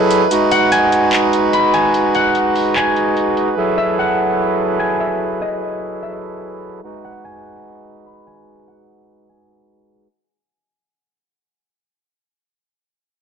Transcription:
Already playing: accordion F#3 E4 G#4 A4 B4, harp E5
0.11 closed hi-hat
0.31 accordion G#3 D#4 F#4, closed hi-hat
0.51 harp F#5, closed hi-hat
0.72 harp G#5, closed hi-hat
0.92 closed hi-hat
1.13 clap, closed hi-hat
1.33 closed hi-hat
1.53 harp B5, closed hi-hat
1.74 harp G#5, closed hi-hat
1.94 closed hi-hat
2.15 harp F#5, closed hi-hat
2.35 closed hi-hat
2.56 open hi-hat
2.76 harp G#5, clap, closed hi-hat
2.96 closed hi-hat
3.17 closed hi-hat
3.37 closed hi-hat
3.57 accordion F#3 E4 G#4 A4
3.78 harp E5
3.99 harp F#5
4.79 harp G#5
5.00 harp E5
5.42 harp D#5
6.03 harp E5
6.84 accordion G#3 D#4 F#4 B4
7.05 harp F#5
7.25 harp G#5
8.06 harp B5
8.27 harp G#5
8.68 harp F#5
9.29 harp G#5

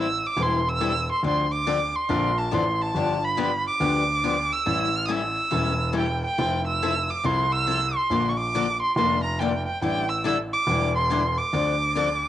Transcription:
Already playing: grand piano A1
0.00 violin E6
0.26 violin D6
0.36 grand piano E1, steel-string acoustic guitar E3 G3 C4 E4 A4
0.42 violin C6
0.69 violin E6
0.80 steel-string acoustic guitar E3 G3 C4 E4 A4
1.12 violin C6
1.23 grand piano D2, steel-string acoustic guitar D3 F3 C4 D4 A4
1.27 violin C6
1.53 violin D6
1.67 steel-string acoustic guitar D3 F3 C4 D4 A4
1.96 violin C6
2.09 grand piano A#1, steel-string acoustic guitar D3 F3 C4 D4 A4
2.38 violin A5
2.52 grand piano A1, steel-string acoustic guitar D3 F3 C4 D4 A4, violin C6
2.82 violin A5
2.95 grand piano G1, steel-string acoustic guitar D3 F3 B3 D4 G4
3.25 violin B5
3.37 steel-string acoustic guitar D3 F3 B3 D4 G4
3.67 violin D6
3.80 grand piano D2, steel-string acoustic guitar D3 F3 B3 D4 G4
4.24 steel-string acoustic guitar D3 F3 B3 D4 G4
4.53 violin E6
4.66 grand piano A1, steel-string acoustic guitar E3 G3 C#4 E4 A4
4.97 violin F6
5.06 steel-string acoustic guitar E3 G3 C#4 E4 A4, violin D#6
5.11 violin E6
5.50 grand piano E1, steel-string acoustic guitar E3 G3 C#4 E4 A4
5.93 steel-string acoustic guitar E3 G3 C#4 E4 A4
5.98 violin G5
6.25 violin G5
6.38 grand piano F1, steel-string acoustic guitar F3 C4 E4 A4
6.67 violin E6
6.82 steel-string acoustic guitar F3 C4 E4 A4
7.10 violin D6
7.23 grand piano C2, steel-string acoustic guitar F3 C4 E4 A4, violin C6
7.52 violin E6
7.67 steel-string acoustic guitar F3 C4 E4 A4
7.96 violin C6
8.10 grand piano A#1, steel-string acoustic guitar D3 F3 A#3 D4 A4
8.29 violin C#6
8.38 violin D6
8.55 steel-string acoustic guitar D3 F3 A#3 D4 A4
8.82 violin C6
8.96 grand piano F1, steel-string acoustic guitar D3 F3 A#3 D4 A4, violin C6
9.23 violin A#5
9.39 steel-string acoustic guitar D3 F3 A#3 D4 A4, violin G5
9.66 violin G5
9.82 grand piano A1, steel-string acoustic guitar D3 G3 D4 E4 A4, violin G5
10.09 violin E6
10.24 steel-string acoustic guitar D3 G3 D4 E4 A4, violin E6
10.53 violin D6
10.67 grand piano E1, steel-string acoustic guitar D3 G3 D4 E4 A4
10.95 violin C6
11.10 steel-string acoustic guitar D3 G3 D4 E4 A4
11.38 violin D6
11.53 grand piano D2, steel-string acoustic guitar D3 F3 C4 D4 A4
11.96 steel-string acoustic guitar D3 F3 C4 D4 A4

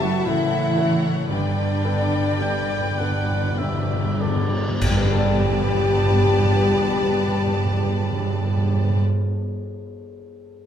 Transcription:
Already playing: grand piano F#1 F#2 C#4 E4 A4, double bass section F#2, harp F#2 C#3 C#4 A4 C#5, violin section B4 E5 A5
0.01 cello section F#3, viola section A3, harp E4, clarinet F#4, french horn section F#4, flute F#5
0.25 grand piano F#1 F#2, double bass section A2, harp C#3, cello section E3, viola section A3, clarinet E4, french horn section E4, violin section A4 F#5, flute E5
0.51 harp C#4
0.76 harp C#3, grand piano C#4 E4 A4, violin section C#5
1.02 harp C#4
1.29 grand piano G1 G2, double bass section G2, harp G2, cello section D3, viola section G3, clarinet D4, french horn section D4, violin section B4 D5 G5, flute D5
1.47 timpani G2
1.56 timpani G2, harp D3
1.67 timpani G2
1.76 timpani G2
1.84 timpani G2, harp B3, grand piano B3 D4 A4
1.93 timpani G2
2.03 timpani G2
2.12 timpani G2, harp D4
2.21 timpani G2
2.32 timpani G2
2.40 grand piano G1 G2, harp A4, oboe G5
2.50 timpani G2
2.60 timpani G2
2.68 timpani G2, harp B4
2.79 timpani G2
2.91 timpani G2
2.98 timpani G2, grand piano B3 D4 A4, harp A4, oboe F#5
3.11 timpani G2
3.21 timpani G2
3.27 timpani G2, harp D4
3.42 timpani G2
3.51 timpani G2
3.57 grand piano G1 G2, harp D3, oboe E5
3.62 timpani G2
3.73 timpani G2
3.84 timpani G2
3.88 harp B3
3.94 timpani G2
4.04 timpani G2
4.15 timpani G2
4.19 harp D3, grand piano B3 D4 A4, oboe D5
4.25 timpani G2
4.36 timpani G2
4.47 timpani G2, harp B3
4.58 timpani G2
4.69 timpani G2
4.82 harp G2, timpani G2, double bass section G2, grand piano G2, cello section G3, viola section B3, clarinet G4, french horn section G4, violin section B4 D5 A5, flute G5, concert bass drum, crash
4.89 timpani G2, harp G3, grand piano G3
4.96 timpani G2, harp B3, grand piano B3
5.03 timpani G2, harp D4, grand piano D4
5.09 timpani G2, harp A4, grand piano A4
5.15 timpani G2, harp D5, grand piano D5
5.22 timpani G2
5.29 timpani G2
5.35 timpani G2
5.41 timpani G2
5.48 timpani G2
5.54 timpani G2
5.60 timpani G2
5.67 timpani G2
5.72 timpani G2
5.79 timpani G2
5.85 timpani G2
5.92 timpani G2
5.98 timpani G2
6.05 timpani G2
6.12 timpani G2
6.19 timpani G2
6.26 timpani G2
6.32 timpani G2
6.39 timpani G2
6.45 timpani G2
6.51 timpani G2
6.57 timpani G2
6.63 timpani G2
6.70 timpani G2
6.75 timpani G2
6.82 timpani G2
6.89 timpani G2
6.95 timpani G2
7.02 timpani G2
7.08 timpani G2
7.14 timpani G2
7.21 timpani G2
7.27 timpani G2
7.33 timpani G2
7.40 timpani G2
7.46 timpani G2
7.53 timpani G2
7.59 timpani G2
7.66 timpani G2
7.72 timpani G2
7.78 timpani G2
7.84 timpani G2
7.91 timpani G2
7.98 timpani G2
8.04 timpani G2
8.11 timpani G2
8.17 timpani G2
8.24 timpani G2
8.30 timpani G2
8.37 timpani G2
8.44 timpani G2
8.51 timpani G2
8.57 timpani G2
8.64 timpani G2
8.70 timpani G2
8.76 timpani G2
8.83 timpani G2
8.89 timpani G2
8.96 timpani G2

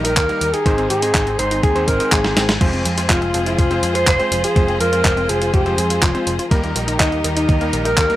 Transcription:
Already playing: picked electric bass A#1, string section D#3 D#4 G4 A#4, electric grand piano G3 A#3 D#4 A#4
0.05 synth arpeggio sound D#4, alto saxophone A#4, closed hi-hat
0.17 picked electric bass D#2, synth arpeggio sound D#3, alto saxophone A#4, kick, clap, closed hi-hat
0.29 electric grand piano G3 A#3 D#4 A#4, synth arpeggio sound A#3, closed hi-hat
0.41 picked electric bass D#2, synth arpeggio sound D#3, closed hi-hat
0.53 synth arpeggio sound D#4, alto saxophone G#4, closed hi-hat
0.66 picked electric bass G#1, electric grand piano G#2 G#3 C4 D#4 C5, synth arpeggio sound D#3, string section C4 G#4, kick, closed hi-hat
0.78 synth arpeggio sound C4, closed hi-hat
0.90 picked electric bass G#2, synth arpeggio sound D#3, alto saxophone G#4, closed hi-hat
1.02 electric grand piano G#2 G#3 C4 D#4 C5, synth arpeggio sound D#4, closed hi-hat
1.15 picked electric bass G#1, synth arpeggio sound D#3, kick, clap, closed hi-hat
1.27 synth arpeggio sound C4, closed hi-hat
1.39 picked electric bass G#1, electric grand piano G#2 G#3 C4 D#4 C5, synth arpeggio sound D#3, alto saxophone C5, closed hi-hat
1.51 synth arpeggio sound D#4, closed hi-hat
1.63 picked electric bass D#2, synth arpeggio sound D#3, alto saxophone G#4, kick, closed hi-hat
1.75 electric grand piano G#2 G#3 C4 D#4 C5, synth arpeggio sound C4, closed hi-hat
1.88 picked electric bass G#1, synth arpeggio sound C4, alto saxophone A#4, kick, closed hi-hat
2.00 electric grand piano G#2 G#3 C4 D#4 C5, synth arpeggio sound D#3, closed hi-hat
2.12 picked electric bass G#1, synth arpeggio sound G#3, alto saxophone G#4, kick, clap, closed hi-hat
2.24 electric grand piano G#2 G#3 C4 D#4 C5, synth arpeggio sound C5, snare, closed hi-hat
2.37 picked electric bass G#1, synth arpeggio sound C4, snare, closed hi-hat
2.49 synth arpeggio sound G#3, snare, closed hi-hat
2.61 picked electric bass F1, synth arpeggio sound F3, string section F3 F4 C5, electric grand piano G#3 C4 F4 C5, kick, closed hi-hat, crash
2.73 synth arpeggio sound C4, closed hi-hat
2.85 picked electric bass F2, synth arpeggio sound F3, closed hi-hat
2.98 electric grand piano G#3 C4 F4 C5, synth arpeggio sound F4, closed hi-hat
3.10 picked electric bass F1, synth arpeggio sound F3, alto saxophone F4, kick, clap, closed hi-hat
3.22 synth arpeggio sound C4, closed hi-hat
3.34 picked electric bass F1, synth arpeggio sound F3, electric grand piano G#3 C4 F4 C5, closed hi-hat
3.46 synth arpeggio sound F4, alto saxophone F4, closed hi-hat
3.58 picked electric bass F1, synth arpeggio sound F3, kick, closed hi-hat
3.71 electric grand piano G#3 C4 F4 C5, synth arpeggio sound C4, closed hi-hat
3.83 picked electric bass F2, synth arpeggio sound F3, closed hi-hat
3.95 synth arpeggio sound F4, alto saxophone C5, closed hi-hat
4.07 picked electric bass F1, synth arpeggio sound F3, alto saxophone C5, kick, clap, closed hi-hat
4.19 electric grand piano G#3 C4 F4 C5, synth arpeggio sound C4, closed hi-hat
4.32 picked electric bass F1, synth arpeggio sound F3, closed hi-hat
4.44 synth arpeggio sound F4, alto saxophone G#4, closed hi-hat
4.56 picked electric bass F1, synth arpeggio sound F3, electric grand piano G#3 C4 F4 C5, kick, closed hi-hat
4.68 synth arpeggio sound C4, closed hi-hat
4.80 picked electric bass F2, synth arpeggio sound F3, alto saxophone A#4, closed hi-hat
4.93 electric grand piano G#3 C4 F4 C5, synth arpeggio sound F4, closed hi-hat
5.05 picked electric bass F1, synth arpeggio sound F3, kick, clap, closed hi-hat
5.17 synth arpeggio sound C4, closed hi-hat
5.29 picked electric bass F1, synth arpeggio sound F3, electric grand piano G#3 C4 F4 C5, alto saxophone G#4, closed hi-hat
5.42 synth arpeggio sound F4, closed hi-hat
5.54 picked electric bass F1, synth arpeggio sound F3, alto saxophone G4, kick, closed hi-hat
5.66 electric grand piano G#3 C4 F4 C5, synth arpeggio sound C4, closed hi-hat
5.78 picked electric bass F2, synth arpeggio sound F3, alto saxophone G#4, closed hi-hat
5.90 synth arpeggio sound F4, closed hi-hat
6.02 picked electric bass F1, synth arpeggio sound F3, alto saxophone F4, kick, clap, closed hi-hat
6.15 electric grand piano G#3 C4 F4 C5, synth arpeggio sound C4, closed hi-hat
6.27 picked electric bass F1, synth arpeggio sound F3, closed hi-hat
6.39 synth arpeggio sound F4, closed hi-hat
6.51 picked electric bass D#2, synth arpeggio sound D#3, string section D#3 D#4 G4 A#4, electric grand piano G3 A#3 D#4 A#4, kick, closed hi-hat
6.64 synth arpeggio sound A#3, closed hi-hat
6.75 picked electric bass A#1, synth arpeggio sound D#3, closed hi-hat
6.88 electric grand piano G3 A#3 D#4 A#4, synth arpeggio sound D#4, closed hi-hat
7.00 picked electric bass D#2, synth arpeggio sound D#3, alto saxophone D#4, kick, clap, closed hi-hat
7.12 synth arpeggio sound A#3, closed hi-hat
7.24 picked electric bass D#2, synth arpeggio sound D#3, electric grand piano G3 A#3 D#4 A#4, closed hi-hat
7.37 alto saxophone D#4, synth arpeggio sound D#4, closed hi-hat
7.49 picked electric bass D#2, synth arpeggio sound D#3, kick, closed hi-hat
7.61 electric grand piano G3 A#3 D#4 A#4, synth arpeggio sound A#3, closed hi-hat
7.73 picked electric bass A#1, synth arpeggio sound D#3, closed hi-hat
7.85 synth arpeggio sound D#4, alto saxophone A#4, closed hi-hat
7.97 picked electric bass D#2, synth arpeggio sound D#3, alto saxophone A#4, kick, clap, closed hi-hat
8.10 electric grand piano G3 A#3 D#4 A#4, synth arpeggio sound A#3, closed hi-hat

